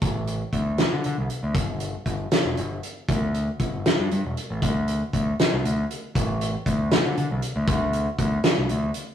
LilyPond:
<<
  \new Staff \with { instrumentName = "Picked electric bass" } { \clef bass \time 6/8 \key d \mixolydian \tempo 4. = 78 a,,4 d,8. d16 d16 c,16 r16 d,16 | g,,4 g,,8 r16 e,,16 g,,8 r8 | d,4 g,,8. g,16 g,16 e,,16 r16 a,,16 | d,4 d,8 r16 c,16 d,8 r8 |
a,,4 d,8. d16 d16 c,16 r16 d,16 | d,4 d,8 r16 c,16 d,8 r8 | }
  \new DrumStaff \with { instrumentName = "Drums" } \drummode { \time 6/8 <hh bd>8 hh8 <hh bd>8 <hh sn>8 hh8 hh8 | <hh bd>8 hh8 <hh bd>8 <hh sn>8 hh8 hh8 | <hh bd>8 hh8 <hh bd>8 <hh sn>8 hh8 hh8 | <hh bd>8 hh8 <hh bd>8 <hh sn>8 hh8 hh8 |
<hh bd>8 hh8 <hh bd>8 <hh sn>8 hh8 hh8 | <hh bd>8 hh8 <hh bd>8 <hh sn>8 hh8 hh8 | }
>>